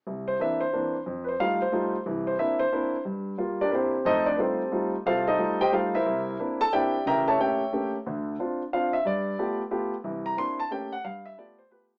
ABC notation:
X:1
M:3/4
L:1/8
Q:"Swing" 1/4=180
K:Cmix
V:1 name="Grand piano"
z c e c3 | z [=Bc] f c3 | z c e c3 | z3 [DGBd] [CGc]2 |
[_EAc_e] [Dd] [CGA=Bc]3 z | [FAcf] [_EAc_e]2 [Gceg] [Acf] [=EBc=e]- | [EBce]2 z [Aa] [Gdeg]2 | [Begb] [A^cea] [ceg]3 z |
z4 f e | d3 z3 | z b c' a g ^f | f e d c =B z |]
V:2 name="Grand piano"
C,,2 [E,B,CD] z [E,B,CD] z | F,,2 [G,A,_EF] z [G,A,EF] z | [C,,E,]2 [B,CDE] z [B,CDE] z | G,,2 [G,B,F] z [B,CDE] z |
[F,,A,]2 [G,A,_EF] z [G,A,EF] z | C,,2 [G,A,_EF] z [G,A,EF] z | C,,2 [B,CDE] z [B,CDE] z | [A,,,^C,]2 [A,B,^CG] z [A,B,CG] z |
[D,,D,]2 [CDF] z [CDF] z | G,,2 [A,=B,FG] z [A,B,FG] z | [C,,E,]2 [B,CDE] z [A,B,^CG] z | G,,2 [A,=B,FG] z [A,B,FG] z |]